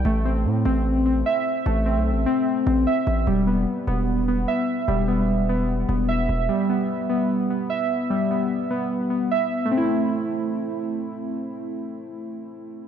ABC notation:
X:1
M:4/4
L:1/16
Q:1/4=149
K:Am
V:1 name="Synth keys"
A,2 C4 C4 C2 e4 | A,2 C4 C4 C2 e4 | G,2 B,4 B,4 B,2 e4 | G,2 B,4 B,4 B,2 e4 |
G,2 B,4 B,4 B,2 e4 | G,2 B,4 B,4 B,2 e4 | [A,CE]16- | [A,CE]16 |]
V:2 name="808-style bass" clef=bass
A,,,4 A,,2 A,,,6 z4 | A,,,3 B,,,3/2 A,,,3/2 z4 A,,,2 z2 A,,,2 | E,,,4 z2 E,,,6 z4 | E,,,8- E,,,2 E,,,4 E,,,2 |
z16 | z16 | z16 | z16 |]